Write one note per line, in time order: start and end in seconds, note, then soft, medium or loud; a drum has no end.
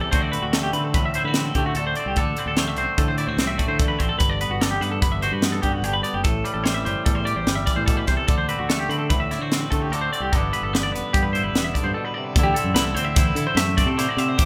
0.00 0.12 E2 medium
0.00 0.12 C3 medium
0.00 0.11 G3 medium
0.00 0.11 A4 medium
0.11 0.40 D2 medium
0.11 1.75 D3 medium
0.11 0.54 A3 medium
0.11 0.33 C4 medium
0.11 1.16 F#4 medium
0.11 0.21 C5 medium
0.11 kick medium
0.11 closed hi-hat medium
0.21 0.31 D5 medium
0.32 0.76 C4 medium
0.32 0.42 B4 medium
0.32 closed hi-hat medium
0.42 0.70 D2 medium
0.42 0.53 F#4 medium
0.53 1.56 A3 medium
0.53 0.63 A4 medium
0.53 snare loud
0.53 closed hi-hat medium
0.63 0.73 G4 medium
0.73 0.96 D3 medium
0.73 1.36 C4 soft
0.73 0.84 B4 medium
0.73 closed hi-hat medium
0.84 0.94 A4 medium
0.94 1.21 D2 medium
0.94 1.76 A2 medium
0.94 1.04 B4 medium
0.94 kick loud
0.94 closed hi-hat medium
1.06 1.15 E5 medium
1.14 1.28 E4 medium
1.14 1.25 C5 medium
1.14 closed hi-hat medium
1.24 1.52 D3 medium
1.24 2.18 F#4 soft
1.24 1.46 B4 medium
1.34 1.97 C4 medium
1.34 snare loud
1.34 closed hi-hat medium
1.46 1.55 A4 medium
1.55 1.73 D3 medium
1.55 2.15 A3 medium
1.55 1.65 G4 medium
1.55 kick medium
1.55 closed hi-hat medium
1.66 1.76 F#4 medium
1.75 1.93 D2 medium
1.75 2.17 D3 medium
1.75 1.86 A4 medium
1.75 closed hi-hat medium
1.87 1.96 C5 medium
1.95 2.06 D5 medium
1.95 closed hi-hat medium
1.99 2.15 C4 medium
2.06 2.15 C2 medium
2.06 2.17 G4 medium
2.16 2.34 D2 medium
2.16 3.79 D3 medium
2.16 2.38 A4 medium
2.16 kick medium
2.16 closed hi-hat medium
2.37 2.78 C4 medium
2.37 2.47 B4 medium
2.37 closed hi-hat medium
2.46 2.76 D2 medium
2.46 2.58 A4 medium
2.57 3.57 A3 medium
2.57 2.68 C5 medium
2.57 snare loud
2.57 closed hi-hat medium
2.68 2.77 E5 medium
2.76 2.86 C2 medium
2.76 3.38 C4 medium
2.76 2.98 C5 medium
2.76 closed hi-hat soft
2.98 3.80 A2 medium
2.98 3.25 D3 medium
2.98 3.08 A4 medium
2.98 kick medium
2.98 closed hi-hat medium
3.08 3.18 C5 medium
3.18 3.28 E4 medium
3.18 3.27 D5 medium
3.18 closed hi-hat medium
3.27 3.36 D2 medium
3.27 4.20 F#4 soft
3.27 3.47 C5 medium
3.37 3.56 C2 medium
3.37 3.99 C4 medium
3.37 snare loud
3.37 closed hi-hat medium
3.47 3.58 E5 medium
3.58 4.17 A3 medium
3.58 3.68 D5 medium
3.58 kick medium
3.58 closed hi-hat medium
3.68 3.96 D3 medium
3.68 3.78 C5 medium
3.78 4.60 D3 medium
3.78 3.88 A4 medium
3.78 kick medium
3.78 closed hi-hat medium
3.88 3.99 B4 medium
3.99 4.09 A1 medium
3.99 4.18 C4 medium
3.99 4.08 C5 medium
3.99 kick medium
3.99 closed hi-hat medium
4.09 4.18 A4 medium
4.19 4.48 G1 medium
4.19 5.01 G2 medium
4.19 4.30 B4 medium
4.19 kick medium
4.19 closed hi-hat medium
4.30 4.40 D5 medium
4.41 4.81 B3 soft
4.41 4.51 B4 medium
4.41 closed hi-hat medium
4.50 4.77 G1 medium
4.50 4.61 F#4 medium
4.61 5.63 D3 medium
4.61 4.70 A4 medium
4.61 snare loud
4.61 closed hi-hat medium
4.71 4.81 G4 medium
4.81 5.04 G2 medium
4.81 5.43 B3 medium
4.81 4.91 B4 medium
4.81 closed hi-hat medium
4.91 5.01 A4 medium
5.02 5.29 G1 medium
5.02 5.82 G2 medium
5.02 5.12 B4 medium
5.02 kick loud
5.02 closed hi-hat medium
5.12 5.22 E5 medium
5.22 6.22 F#4 medium
5.22 5.33 C5 medium
5.22 closed hi-hat medium
5.32 5.59 G2 medium
5.32 5.53 B4 medium
5.42 6.03 B3 medium
5.42 snare loud
5.42 closed hi-hat medium
5.52 5.62 A4 medium
5.62 5.81 G2 medium
5.62 6.25 D3 medium
5.62 5.72 G4 medium
5.62 kick medium
5.62 closed hi-hat medium
5.72 5.84 F#4 medium
5.82 6.01 G1 medium
5.82 6.22 G2 medium
5.82 5.94 G4 medium
5.82 closed hi-hat medium
5.93 6.03 B4 medium
6.03 6.22 B3 medium
6.03 6.14 D5 medium
6.03 closed hi-hat medium
6.14 6.23 F#1 medium
6.14 6.23 G4 medium
6.24 6.43 A1 medium
6.24 7.06 A2 medium
6.24 6.45 A4 medium
6.24 kick medium
6.24 closed hi-hat medium
6.44 6.85 G3 medium
6.44 6.53 B4 medium
6.44 closed hi-hat medium
6.54 6.86 A1 medium
6.54 6.64 A4 medium
6.64 7.65 E3 medium
6.64 6.74 C5 medium
6.64 snare medium
6.64 closed hi-hat medium
6.75 6.85 E5 medium
6.85 6.94 G1 medium
6.85 7.46 G3 medium
6.85 7.05 C5 medium
6.85 closed hi-hat medium
7.05 8.28 E2 medium
7.05 7.33 A2 medium
7.05 7.15 A4 medium
7.05 kick medium
7.05 closed hi-hat medium
7.15 7.25 C5 medium
7.25 8.25 G4 medium
7.25 7.36 D5 medium
7.25 closed hi-hat medium
7.36 7.45 A1 medium
7.36 7.55 C5 medium
7.47 7.65 G1 medium
7.47 8.28 G3 medium
7.47 snare loud
7.47 closed hi-hat medium
7.55 7.66 E5 medium
7.66 8.25 E3 medium
7.66 7.76 D5 medium
7.66 kick medium
7.66 snare soft
7.66 closed hi-hat medium
7.76 8.04 A2 medium
7.76 7.86 C5 medium
7.86 8.08 B2 medium
7.86 7.97 A4 medium
7.86 kick loud
7.86 closed hi-hat medium
7.97 8.07 B4 medium
8.07 8.17 C2 medium
8.07 8.29 C3 medium
8.07 8.17 C5 medium
8.07 kick medium
8.07 snare soft
8.07 closed hi-hat medium
8.17 8.26 A4 medium
8.27 8.55 D2 medium
8.27 9.91 D3 medium
8.27 8.37 A4 medium
8.27 kick medium
8.27 closed hi-hat medium
8.38 8.48 C5 medium
8.49 8.89 C4 medium
8.49 8.58 B4 medium
8.49 closed hi-hat medium
8.59 8.86 D2 medium
8.59 8.69 F#4 medium
8.69 9.71 A3 medium
8.69 8.79 A4 medium
8.69 snare loud
8.69 closed hi-hat medium
8.79 8.89 G4 medium
8.89 9.12 D3 medium
8.89 9.51 C4 soft
8.89 8.98 B4 medium
8.89 closed hi-hat medium
8.99 9.09 A4 medium
9.09 9.37 D2 medium
9.09 9.91 A2 medium
9.09 9.19 B4 medium
9.09 kick loud
9.09 closed hi-hat medium
9.20 9.31 E5 medium
9.31 9.41 E4 medium
9.31 9.41 D5 medium
9.31 snare soft
9.31 closed hi-hat medium
9.39 9.66 D3 medium
9.39 10.32 F#4 soft
9.39 9.61 C5 medium
9.52 10.12 C4 medium
9.52 snare medium
9.52 closed hi-hat medium
9.61 9.71 B4 medium
9.71 9.89 D3 medium
9.71 10.30 A3 medium
9.71 9.82 A4 medium
9.71 kick medium
9.71 closed hi-hat medium
9.82 9.92 G4 medium
9.90 10.08 D2 medium
9.90 10.33 D3 medium
9.90 10.01 A4 medium
9.90 closed hi-hat medium
10.01 10.11 C5 medium
10.13 10.30 C4 medium
10.13 10.22 D5 medium
10.13 closed hi-hat medium
10.20 10.30 C2 medium
10.20 10.32 G4 medium
10.32 10.50 G1 medium
10.32 11.14 G2 medium
10.32 10.73 D3 medium
10.32 10.54 B3 medium
10.32 12.35 D4 medium
10.32 10.52 A4 medium
10.32 kick medium
10.32 closed hi-hat medium
10.37 11.34 E4 soft
10.53 10.94 B3 soft
10.53 10.63 B4 medium
10.53 closed hi-hat medium
10.61 10.92 G1 medium
10.61 10.73 A4 medium
10.73 11.75 D3 medium
10.73 10.83 B4 medium
10.73 snare loud
10.73 closed hi-hat medium
10.83 10.92 D5 medium
10.92 11.01 E1 medium
10.92 11.55 B3 medium
10.92 11.13 B4 medium
10.92 closed hi-hat medium
11.13 11.41 G2 medium
11.13 12.34 G2 medium
11.13 11.23 G4 medium
11.13 kick medium
11.13 closed hi-hat medium
11.23 11.33 B4 medium
11.33 12.37 E4 medium
11.33 11.44 C5 medium
11.33 closed hi-hat medium
11.44 11.53 G1 medium
11.44 11.64 B4 medium
11.53 11.72 E1 medium
11.53 12.34 B3 medium
11.53 snare loud
11.53 closed hi-hat medium
11.64 11.74 E5 medium
11.74 12.38 D3 medium
11.74 11.84 D5 medium
11.74 kick medium
11.74 closed hi-hat medium
11.84 11.93 G2 medium
11.84 11.94 C5 medium
11.94 12.16 B2 medium
11.94 12.05 A4 medium
12.05 12.14 B4 medium
12.14 12.36 C3 medium
12.14 12.24 D5 medium
12.24 12.34 B4 medium
12.34 12.54 D2 loud
12.34 12.44 A4 medium
12.34 kick loud
12.34 closed hi-hat medium
12.39 13.96 D3 medium
12.39 12.77 E4 medium
12.43 12.54 G4 medium
12.54 12.74 A4 medium
12.54 closed hi-hat medium
12.59 12.98 C4 medium
12.64 12.74 F#2 medium
12.74 12.93 C2 medium
12.74 13.17 E4 medium
12.74 12.84 B4 medium
12.74 snare loud
12.74 closed hi-hat medium
12.84 12.95 A4 medium
12.95 13.32 D2 medium
12.95 13.76 C4 medium
12.95 13.04 C5 medium
12.95 closed hi-hat medium
13.04 13.15 E5 medium
13.15 13.37 E4 medium
13.15 13.27 C5 medium
13.15 kick loud
13.15 snare soft
13.15 closed hi-hat medium
13.27 13.36 B4 medium
13.35 13.45 D3 medium
13.35 13.97 E4 medium
13.35 13.46 A4 medium
13.35 closed hi-hat medium
13.47 13.57 C5 medium
13.55 13.83 F#2 medium
13.55 14.40 A3 medium
13.55 13.77 E5 medium
13.55 snare loud
13.55 closed hi-hat medium
13.77 14.17 C4 medium
13.77 13.88 D5 medium
13.77 kick medium
13.77 snare soft
13.77 closed hi-hat medium
13.86 14.05 C3 medium
13.86 13.98 A4 medium
13.98 14.39 D3 medium
13.98 14.37 E4 medium
13.98 14.08 C5 medium
13.98 snare soft
13.98 closed hi-hat medium
14.09 14.18 D5 medium
14.17 14.36 C3 medium
14.17 14.36 C4 medium
14.17 14.28 E5 medium
14.17 closed hi-hat medium
14.28 14.45 C5 medium
14.37 14.45 A1 medium
14.37 14.45 A2 medium
14.37 14.45 G4 medium
14.37 kick loud
14.37 closed hi-hat medium